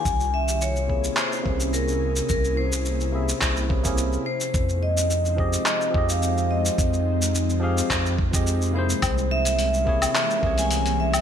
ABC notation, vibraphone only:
X:1
M:4/4
L:1/16
Q:"Swing 16ths" 1/4=107
K:Cphr
V:1 name="Vibraphone"
a2 =e2 d4 c4 B4 | B2 c12 c2- | c2 e6 e3 f3 e2- | e6 z8 c2- |
c2 =e6 e3 a3 e2 |]